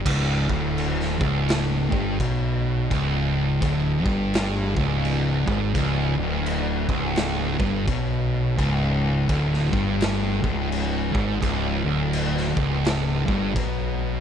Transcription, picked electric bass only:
0.06 0.46 C#1 medium
0.50 1.17 D1 loud
1.21 1.88 C#1 medium
1.92 2.18 G1 loud
2.20 2.87 B1 loud
2.91 3.58 C#1 medium
3.62 4.02 D1 loud
4.06 4.72 G1 loud
4.76 5.43 C#1 medium
5.47 5.73 G#1 loud
5.75 6.15 C#1 medium
6.17 6.84 D1 loud
6.89 7.56 C#1 medium
7.60 7.85 G1 loud
7.88 8.54 B1 medium
8.58 9.25 C#1 medium
9.29 9.69 D1 medium
9.73 10.40 G1 medium
10.44 11.11 C#1 medium
11.15 11.40 G#1 medium
11.42 11.82 C#1 medium
11.84 12.52 D1 loud
12.57 13.24 C#1 medium
13.28 13.54 G1 loud
13.56 14.20 B1 medium

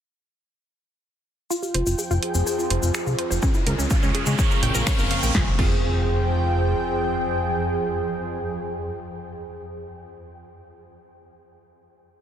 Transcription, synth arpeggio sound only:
1.50 1.56 F4 loud
1.62 1.71 G4 medium
1.74 1.86 C5 loud
1.86 1.95 F4 medium
1.98 2.04 G#4 medium
2.11 2.16 F4 loud
2.23 2.28 C5 medium
2.35 2.43 C4 medium
2.47 2.55 G#4 medium
2.59 2.67 F4 medium
2.70 2.82 C5 medium
2.83 2.91 F4 medium
2.94 3.00 G#4 medium
3.07 3.12 F4 medium
3.18 3.24 C5 medium
3.31 3.39 C5 medium
3.42 3.48 C#4 loud
3.55 3.63 E4 medium
3.67 3.78 A#4 loud
3.79 3.87 C#4 medium
3.90 3.96 F4 medium
4.03 4.08 C#4 loud
4.15 4.20 G#4 medium
4.27 4.35 G#3 medium
4.39 4.47 C#5 medium
4.51 4.59 A#4 medium
4.63 4.74 G5 loud
4.75 4.83 A#4 medium
4.87 4.92 C#5 medium
4.99 5.04 A#4 medium
5.11 5.16 F5 medium
5.23 5.31 G5 medium
5.35 5.48 F4 loud
5.59 5.72 F4 medium

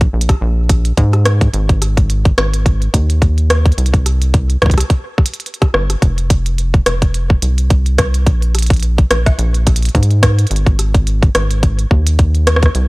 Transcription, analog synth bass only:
0.13 0.35 A#1 medium
0.41 0.92 A#1 loud
0.97 1.48 G#2 loud
1.53 2.33 G#1 loud
2.38 2.89 G#1 medium
2.94 3.73 D#2 medium
3.78 4.57 C2 medium
4.62 4.84 C2 medium
5.74 5.96 G1 loud
6.02 6.81 F1 loud
6.86 7.37 F1 medium
7.42 8.28 C2 medium
8.26 9.05 A#1 medium
9.11 9.32 A#1 medium
9.39 9.90 A#1 loud
9.95 10.46 G#2 loud
10.51 11.30 G#1 loud
11.35 11.86 G#1 medium
11.91 12.70 D#2 medium
12.75 12.88 C2 medium

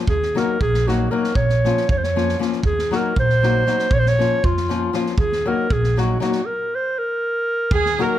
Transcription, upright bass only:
0.07 0.39 D#2 medium
0.61 1.06 A#1 medium
1.35 1.68 A#1 medium
1.88 2.33 F2 medium
2.62 2.95 D#2 medium
3.16 3.61 A#1 medium
3.90 4.22 A#1 medium
4.44 4.88 F2 medium
5.17 5.49 D#2 medium
5.71 6.15 A#1 medium
7.72 8.03 D#2 medium

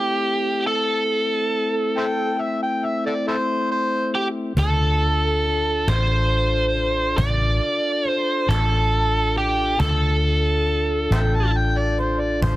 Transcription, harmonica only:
1.98 2.04 C5 medium
1.98 2.06 E5 medium
1.98 2.43 G5 medium
2.41 2.60 E5 medium
2.62 2.87 G5 medium
2.85 3.04 E5 medium
3.06 3.14 A4 soft
3.06 3.25 D5 medium
3.28 3.35 E4 soft
3.28 3.36 A4 soft
3.28 3.69 C5 medium
3.71 4.13 C5 medium
11.13 11.20 C5 soft
11.13 11.21 E5 soft
11.13 11.37 G5 medium
11.36 11.58 A5 medium
11.57 11.79 G5 medium
11.77 12.01 D5 medium
11.99 12.21 C5 medium
12.20 12.41 D5 medium
12.42 12.56 C5 medium

